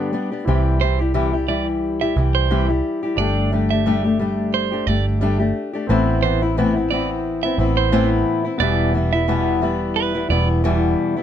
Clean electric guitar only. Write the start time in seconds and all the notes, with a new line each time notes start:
0.81 C5
1.48 D5
2.01 E5
2.35 C5
3.18 D5
3.71 E5
4.54 C5
4.87 D5
6.23 C5
6.91 D5
7.43 E5
7.77 C5
8.60 D5
9.13 E5
9.96 B4
10.30 D5